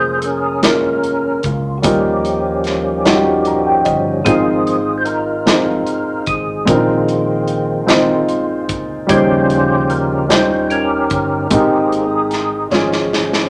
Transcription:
0.00 1.40 F1 medium
0.00 0.23 G#3 medium
0.00 0.23 A#3 medium
0.00 0.24 C#4 medium
0.00 0.24 F4 medium
0.00 0.60 G#4 medium
0.00 0.24 A#4 medium
0.00 0.18 C5 medium
0.18 0.24 A4 medium
0.22 1.41 C#4 medium
0.22 1.48 A#4 medium
0.22 closed hi-hat soft
0.62 1.44 G#3 soft
0.62 1.44 A#3 soft
0.62 1.45 C#4 soft
0.62 1.45 F4 soft
0.62 1.45 A#4 medium
0.62 snare medium
0.62 closed hi-hat medium
1.03 closed hi-hat soft
1.43 1.81 C#2 medium
1.43 1.79 F4 medium
1.43 kick medium
1.43 closed hi-hat soft
1.78 1.84 F#4 soft
1.82 3.81 D#2 medium
1.82 3.01 D#3 soft
1.82 4.21 F3 soft
1.82 2.64 G3 medium
1.82 4.21 G3 soft
1.82 3.81 A#3 soft
1.82 4.21 C#4 soft
1.82 2.65 C#4 medium
1.82 2.65 D#4 medium
1.82 2.66 F4 soft
1.82 3.81 G4 medium
1.82 2.66 A#4 medium
1.82 kick medium
1.82 closed hi-hat medium
2.25 closed hi-hat soft
2.64 snare soft
2.64 closed hi-hat soft
3.04 3.86 G3 medium
3.04 3.86 C#4 soft
3.04 3.87 D#4 medium
3.04 3.87 F4 soft
3.04 3.13 F#4 medium
3.04 snare medium
3.04 closed hi-hat medium
3.15 3.91 G4 medium
3.45 3.65 A#5 soft
3.45 closed hi-hat soft
3.67 3.85 G5 soft
3.85 4.23 G1 medium
3.85 4.23 D#5 medium
3.85 kick medium
3.85 closed hi-hat soft
4.25 6.23 G#1 medium
4.25 5.43 G#2 soft
4.25 4.79 F3 soft
4.25 5.06 G#3 medium
4.25 4.79 A#3 soft
4.25 4.79 C4 medium
4.25 5.07 C4 medium
4.25 5.07 D#4 medium
4.25 5.05 F4 medium
4.25 5.08 F4 medium
4.25 4.95 G#4 medium
4.25 5.08 C5 medium
4.25 kick medium
4.25 closed hi-hat medium
4.67 closed hi-hat soft
4.98 5.05 C5 medium
5.05 6.23 D#4 soft
5.05 6.23 F4 medium
5.05 6.22 A#4 medium
5.05 closed hi-hat soft
5.46 5.83 F3 soft
5.46 6.27 G#3 soft
5.46 5.82 A#3 soft
5.46 5.82 C4 soft
5.46 6.28 C4 soft
5.46 6.28 D#4 soft
5.46 6.29 F4 soft
5.46 6.29 C5 medium
5.46 snare medium
5.46 closed hi-hat medium
5.87 closed hi-hat soft
6.26 6.64 G#1 medium
6.26 6.68 G#4 medium
6.26 kick medium
6.26 closed hi-hat soft
6.65 8.70 A#1 medium
6.65 7.84 A#2 soft
6.65 7.83 D#3 soft
6.65 7.48 G#3 medium
6.65 7.86 G#3 soft
6.65 7.48 C4 medium
6.65 7.88 C4 soft
6.65 6.74 D4 soft
6.65 8.64 F4 medium
6.65 7.49 F4 soft
6.65 7.49 A#4 medium
6.65 kick medium
6.65 closed hi-hat medium
6.74 7.52 D#4 medium
7.08 closed hi-hat soft
7.48 closed hi-hat soft
7.86 8.24 D#3 soft
7.86 8.69 G#3 medium
7.86 8.24 G#3 soft
7.86 8.69 C4 medium
7.86 8.25 C4 soft
7.86 8.70 D#4 medium
7.86 8.70 F4 medium
7.86 8.70 C5 medium
7.86 snare medium
7.86 closed hi-hat medium
8.29 closed hi-hat soft
8.69 9.06 C#2 medium
8.69 kick medium
8.69 closed hi-hat soft
9.07 11.07 D#2 medium
9.07 10.26 C#3 soft
9.07 10.26 D#3 soft
9.07 10.26 F3 soft
9.07 9.89 G3 medium
9.07 10.26 G3 soft
9.07 9.90 C#4 medium
9.07 10.26 C#4 soft
9.07 9.90 D#4 medium
9.07 9.91 F4 medium
9.07 10.26 F4 medium
9.07 10.26 G4 medium
9.07 9.91 C5 medium
9.07 kick medium
9.07 closed hi-hat medium
9.11 9.93 C5 medium
9.50 closed hi-hat soft
9.90 10.31 A#4 medium
9.90 closed hi-hat soft
10.28 11.10 G3 medium
10.28 11.11 C#4 soft
10.28 11.11 D#4 soft
10.28 11.12 F4 soft
10.28 10.68 C5 medium
10.28 11.12 C5 medium
10.28 snare medium
10.28 closed hi-hat medium
10.70 11.47 C#4 medium
10.70 11.47 G4 medium
10.70 11.54 A#4 medium
10.70 closed hi-hat soft
11.10 11.48 G1 medium
11.10 kick medium
11.10 closed hi-hat soft
11.50 12.68 G#1 medium
11.50 12.68 G#2 soft
11.50 12.32 G#3 medium
11.50 12.05 A#3 soft
11.50 12.32 C4 medium
11.50 12.05 C4 soft
11.50 12.33 D#4 medium
11.50 12.69 D#4 soft
11.50 12.04 G4 soft
11.50 12.33 G4 medium
11.50 12.68 G#4 medium
11.50 12.34 A#4 medium
11.50 kick medium
11.50 closed hi-hat medium
11.92 closed hi-hat soft
12.31 snare soft
12.31 closed hi-hat soft
12.71 13.48 G#1 medium
12.71 13.49 F3 soft
12.71 13.49 G#3 soft
12.71 13.49 G#3 medium
12.71 13.49 C#4 medium
12.71 13.49 C#4 soft
12.71 13.49 F4 medium
12.71 13.49 G#4 medium
12.71 snare soft
12.92 snare soft
13.13 snare soft
13.33 snare medium

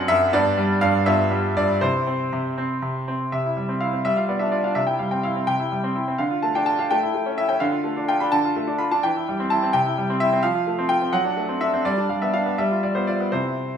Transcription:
0.00 0.09 F#2 medium
0.00 0.31 F#3 medium
0.00 0.29 C4 medium
0.00 0.29 D4 medium
0.00 0.34 F#5 loud
0.08 0.32 F#2 medium
0.08 0.32 E5 loud
0.33 0.80 G2 medium
0.33 1.02 B3 medium
0.33 1.02 D4 medium
0.33 0.81 D5 loud
0.58 1.05 G3 medium
0.81 1.05 G2 medium
0.81 1.06 F5 loud
1.06 1.55 G2 medium
1.06 1.78 B3 soft
1.06 1.78 F4 soft
1.06 1.56 E5 medium
1.31 1.80 G3 medium
1.57 1.81 G2 medium
1.57 1.82 D5 medium
1.81 2.31 C3 medium
1.81 2.06 C4 soft
1.81 3.29 E4 soft
1.81 2.57 C5 medium
2.07 2.56 C4 medium
2.33 2.81 C3 medium
2.58 3.06 C4 medium
2.82 3.31 C3 medium
3.08 3.32 C4 medium
3.32 4.03 C3 soft
3.32 3.81 E5 medium
3.46 3.65 E4 soft
3.57 3.76 G3 soft
3.69 3.88 C4 soft
3.81 4.00 E4 soft
3.81 4.05 F5 medium
3.93 4.05 C4 soft
4.05 4.75 G3 soft
4.05 4.17 E5 medium
4.17 4.36 F4 soft
4.17 4.29 F5 medium
4.28 4.48 B3 soft
4.28 4.41 D5 soft
4.39 4.60 D4 soft
4.39 4.52 E5 medium
4.52 4.72 F4 soft
4.52 4.64 D5 medium
4.64 4.77 D4 soft
4.64 4.76 F5 medium
4.75 5.46 C3 soft
4.75 4.88 E5 medium
4.87 5.07 E4 soft
4.87 5.00 G5 medium
4.99 5.19 G3 soft
4.99 5.12 F5 soft
5.11 5.32 C4 soft
5.11 5.24 G5 medium
5.23 5.44 E4 soft
5.23 5.48 F5 medium
5.36 5.56 C4 soft
5.47 6.18 C3 soft
5.47 6.20 G5 medium
5.59 5.79 E4 soft
5.72 5.91 G3 soft
5.84 6.03 C4 soft
5.95 6.15 E4 soft
6.08 6.20 C4 soft
6.18 6.89 D3 medium
6.18 6.43 F5 medium
6.31 6.50 F4 soft
6.42 6.62 A3 soft
6.42 6.55 A5 medium
6.55 6.75 D4 soft
6.55 6.67 G5 medium
6.66 6.86 F4 soft
6.66 6.79 A5 medium
6.79 6.91 D4 soft
6.79 6.91 F5 medium
6.91 7.13 A3 medium
6.91 7.38 G5 medium
7.03 7.22 E4 soft
7.14 7.34 A3 soft
7.26 7.45 C#4 soft
7.38 7.57 E4 soft
7.38 7.50 E5 medium
7.49 7.62 C#4 soft
7.49 7.61 G5 medium
7.60 8.31 D3 medium
7.60 8.08 F5 medium
7.72 7.92 F4 soft
7.84 8.04 A3 soft
7.97 8.16 D4 soft
8.08 8.28 F4 soft
8.08 8.21 G5 medium
8.20 8.40 D4 soft
8.20 8.32 B5 medium
8.32 9.01 D3 medium
8.32 8.79 A5 loud
8.45 8.64 F4 soft
8.56 8.75 A3 soft
8.68 8.87 D4 medium
8.78 8.98 F4 medium
8.78 8.91 B5 medium
8.91 9.03 D4 medium
8.91 9.03 A5 medium
9.03 9.72 E3 medium
9.03 9.51 G5 medium
9.17 9.35 E4 soft
9.29 9.47 G3 soft
9.40 9.58 C4 medium
9.50 9.70 E4 medium
9.50 9.74 A5 medium
9.63 9.74 C4 soft
9.73 10.41 C3 medium
9.73 10.20 G5 medium
9.86 10.04 E4 soft
9.98 10.16 G3 soft
10.10 10.28 C4 medium
10.20 10.39 E4 medium
10.20 10.43 E5 medium
10.33 10.44 C4 medium
10.43 11.12 F3 medium
10.43 10.90 F5 medium
10.55 10.74 F4 soft
10.67 10.86 A3 soft
10.79 10.97 C4 medium
10.89 11.09 F4 medium
10.89 11.13 G5 medium
11.02 11.14 C4 soft
11.13 11.83 F#3 medium
11.13 11.61 F#5 medium
11.24 11.44 D4 soft
11.37 11.56 A3 soft
11.49 11.68 C4 soft
11.61 11.80 D4 soft
11.61 11.85 E5 medium
11.73 11.85 C4 medium
11.85 12.09 G3 medium
11.85 12.09 D5 medium
11.98 12.17 D4 soft
12.09 12.29 G3 soft
12.09 12.21 F5 medium
12.22 12.41 B3 soft
12.22 12.34 E5 medium
12.34 12.53 D4 soft
12.34 12.58 F5 medium
12.46 12.58 B3 soft
12.58 12.82 G3 medium
12.58 12.83 E5 medium
12.71 12.90 F4 soft
12.83 13.03 G3 soft
12.83 12.95 D5 soft
12.95 13.15 B3 soft
12.95 13.07 C5 medium
13.07 13.27 F4 soft
13.07 13.32 D5 medium
13.20 13.32 B3 soft
13.32 13.77 C3 soft
13.32 13.77 C4 soft
13.32 13.77 E4 soft
13.32 13.77 C5 medium

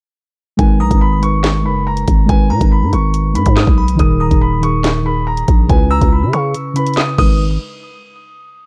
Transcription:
0.57 0.82 G#1 loud
0.57 0.83 G#3 loud
0.57 0.84 D#4 medium
0.57 0.85 A#4 medium
0.57 0.78 G#5 medium
0.57 kick loud
0.57 closed hi-hat medium
0.63 0.86 B4 loud
0.80 0.90 B1 loud
0.80 0.99 A#5 medium
0.80 2.25 D#6 medium
0.88 1.67 G#1 loud
0.88 1.15 G#3 medium
0.88 1.15 D#4 medium
0.88 1.16 A#4 medium
0.88 kick loud
0.88 closed hi-hat medium
0.94 1.17 B4 medium
1.01 1.20 B5 medium
1.20 1.55 G#3 medium
1.20 1.55 D#4 medium
1.20 1.56 A#4 medium
1.20 1.63 C#6 medium
1.20 closed hi-hat medium
1.25 1.57 B4 medium
1.44 snare loud
1.44 clap medium
1.44 closed hi-hat medium
1.62 2.06 F#1 loud
1.62 2.14 G#3 medium
1.62 2.15 D#4 medium
1.62 2.16 A#4 medium
1.62 1.84 B5 medium
1.68 2.17 B4 medium
1.87 2.27 A#5 medium
1.97 closed hi-hat medium
2.08 2.28 G#1 loud
2.08 kick medium
2.08 closed hi-hat medium
2.26 2.52 G#1 loud
2.26 2.52 G#3 loud
2.26 2.53 D#4 medium
2.26 2.54 A#4 medium
2.26 2.48 G#5 medium
2.26 kick loud
2.26 closed hi-hat medium
2.31 2.55 B4 loud
2.50 2.60 B2 loud
2.50 3.74 A#5 medium
2.50 2.69 A#5 medium
2.58 2.84 G#1 loud
2.58 3.18 G#3 medium
2.58 3.19 D#4 medium
2.58 3.20 A#4 medium
2.58 kick loud
2.58 closed hi-hat medium
2.64 3.21 B4 medium
2.72 2.90 B5 medium
2.82 2.92 G#2 loud
2.93 3.37 G#1 loud
2.93 3.33 C#6 medium
2.93 closed hi-hat medium
3.14 closed hi-hat medium
3.33 3.46 G#2 loud
3.33 3.84 G#3 medium
3.33 3.85 D#4 medium
3.33 3.86 A#4 medium
3.33 3.54 B5 medium
3.33 closed hi-hat medium
3.39 3.87 B4 medium
3.46 3.66 G#2 loud
3.46 kick medium
3.46 closed hi-hat medium
3.57 3.97 D#6 medium
3.57 snare loud
3.57 clap loud
3.67 3.98 B1 loud
3.67 kick loud
3.78 3.98 B5 medium
3.88 closed hi-hat medium
3.95 4.30 D#1 loud
3.95 4.22 D#3 loud
3.95 4.23 D#4 medium
3.95 4.24 G#4 medium
3.95 kick loud
3.95 closed hi-hat medium
4.00 4.25 A#4 loud
4.00 4.18 D#6 medium
4.20 4.39 A#5 medium
4.20 5.65 D#6 medium
4.29 5.44 D#1 loud
4.29 4.55 D#3 medium
4.29 4.56 D#4 medium
4.29 4.57 G#4 medium
4.29 kick loud
4.29 closed hi-hat medium
4.34 4.58 A#4 medium
4.41 4.60 B5 medium
4.60 4.95 D#3 medium
4.60 4.96 D#4 medium
4.60 4.97 G#4 medium
4.60 5.03 C#6 medium
4.60 closed hi-hat medium
4.65 4.97 A#4 medium
4.84 snare loud
4.84 clap medium
4.84 closed hi-hat medium
5.03 5.54 D#3 medium
5.03 5.55 D#4 medium
5.03 5.56 G#4 medium
5.03 5.24 B5 medium
5.08 5.57 A#4 medium
5.27 5.67 A#5 medium
5.37 closed hi-hat medium
5.48 5.69 A#1 loud
5.48 kick medium
5.48 closed hi-hat medium
5.67 6.00 C#2 loud
5.67 5.93 C#3 loud
5.67 5.94 C#4 medium
5.67 5.95 E4 medium
5.67 5.88 G#5 medium
5.67 kick loud
5.67 closed hi-hat medium
5.72 5.96 B4 loud
5.91 6.09 A#5 medium
5.91 6.93 E6 medium
5.99 6.24 C#2 loud
5.99 6.58 C#3 medium
5.99 6.59 C#4 medium
5.99 6.60 E4 medium
5.99 kick loud
5.99 closed hi-hat medium
6.04 6.61 B4 medium
6.12 6.31 B5 medium
6.23 6.33 C#3 loud
6.33 6.55 C#3 loud
6.33 6.73 C#6 medium
6.33 cross-stick loud
6.33 closed hi-hat medium
6.54 closed hi-hat medium
6.74 7.17 C#3 medium
6.74 7.18 C#4 medium
6.74 7.19 E4 medium
6.74 6.95 B5 medium
6.74 closed hi-hat loud
6.79 7.17 B4 medium
6.86 closed hi-hat medium
6.94 7.17 D#6 medium
6.94 snare loud
6.94 closed hi-hat medium
6.98 clap loud
6.98 closed hi-hat medium
7.18 7.58 G#1 loud
7.18 7.38 G#3 medium
7.18 7.38 D#4 medium
7.18 7.38 A#4 medium
7.18 7.38 B4 loud
7.18 7.38 D#6 medium
7.18 kick loud
7.18 crash medium

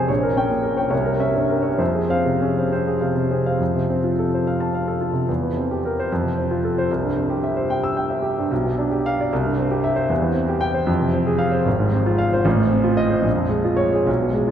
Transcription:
0.00 0.12 F2 medium
0.00 0.12 C3 soft
0.00 0.12 C4 medium
0.00 0.12 C#4 soft
0.00 0.12 G#4 medium
0.00 0.12 C5 medium
0.00 0.12 G#5 medium
0.08 0.89 A#1 soft
0.08 0.30 C#5 soft
0.23 0.44 A#4 soft
0.36 0.80 C#4 soft
0.36 0.48 C#5 soft
0.36 0.49 G5 medium
0.50 0.72 A#2 soft
0.63 0.85 A#4 soft
0.77 0.88 C#5 soft
0.77 0.90 G5 soft
0.90 1.76 C2 medium
0.90 1.14 C#5 medium
1.05 1.28 A#4 soft
1.20 1.68 C#4 soft
1.20 1.33 C#5 soft
1.20 1.33 E5 medium
1.34 1.58 G2 soft
1.49 1.73 A#4 soft
1.62 1.77 C#5 soft
1.62 1.77 E5 soft
1.78 3.56 F2 medium
1.78 2.03 C5 soft
1.95 2.19 G#4 soft
2.09 2.58 C4 soft
2.09 2.23 C5 soft
2.09 2.24 F5 medium
2.25 2.50 C3 soft
2.41 2.71 C#4 soft
2.41 2.65 G#4 soft
2.58 2.70 C5 soft
2.58 2.71 F5 soft
2.72 3.19 C4 soft
2.72 2.95 C5 soft
2.88 3.10 G#4 soft
3.01 3.14 C3 soft
3.01 3.14 C5 soft
3.01 3.14 F5 soft
3.15 3.40 C3 soft
3.31 3.60 C4 soft
3.31 3.54 G#4 soft
3.46 3.59 C5 soft
3.46 3.59 F5 soft
3.60 5.25 F2 soft
3.75 3.98 C3 soft
3.90 4.12 C4 soft
4.04 4.26 F4 soft
4.19 4.41 A4 soft
4.34 4.55 C5 soft
4.47 4.69 F5 soft
4.60 4.82 A5 soft
4.74 4.96 F5 soft
4.88 5.10 A4 soft
5.01 5.23 F4 soft
5.13 5.28 C3 soft
5.29 6.08 E2 soft
5.42 5.64 E3 soft
5.57 5.78 C4 soft
5.71 5.92 G4 soft
5.85 6.06 A#4 soft
6.00 6.11 C5 medium
6.12 6.88 F2 medium
6.23 6.44 C3 soft
6.38 6.58 C4 soft
6.51 6.71 F4 soft
6.65 6.85 A4 soft
6.78 6.90 C5 medium
6.91 8.47 C2 soft
7.03 7.24 G2 soft
7.17 7.37 C4 soft
7.30 7.51 G4 soft
7.43 7.64 E5 soft
7.56 7.77 C5 soft
7.70 7.91 G5 medium
7.84 8.04 E6 medium
7.97 8.18 G5 soft
8.10 8.32 E5 soft
8.22 8.45 G4 soft
8.38 8.51 G2 soft
8.51 9.29 B1 medium
8.64 8.85 B2 soft
8.78 8.99 D4 soft
8.91 9.12 G4 soft
9.06 9.26 F5 medium
9.21 9.32 D5 soft
9.33 10.09 C2 medium
9.45 9.66 G2 soft
9.58 9.79 C4 soft
9.71 9.92 G4 soft
9.84 10.05 E5 medium
9.96 10.09 C5 medium
10.10 10.85 E2 medium
10.22 10.43 E3 soft
10.34 10.55 C4 soft
10.49 10.69 G4 soft
10.61 10.82 G5 medium
10.74 10.88 C5 medium
10.87 11.63 F2 medium
11.00 11.21 C3 soft
11.13 11.34 C4 soft
11.27 11.48 G#4 medium
11.38 11.60 F5 medium
11.52 11.65 C5 medium
11.66 12.42 G#1 medium
11.80 12.00 G#2 medium
11.93 12.13 C4 medium
12.06 12.27 F4 soft
12.18 12.40 F5 medium
12.33 12.46 C5 medium
12.45 13.23 A1 medium
12.58 12.79 A2 soft
12.70 12.92 C4 medium
12.84 13.06 F4 soft
12.97 13.19 D#5 medium
13.10 13.24 C5 medium
13.22 14.04 A#1 medium
13.36 13.59 F2 soft
13.50 13.73 G#3 soft
13.64 13.87 F4 soft
13.77 14.01 C#5 medium
13.93 14.07 G#4 soft
14.06 14.51 B1 medium
14.21 14.45 B2 soft
14.33 14.51 G#3 soft
14.48 14.51 F4 soft

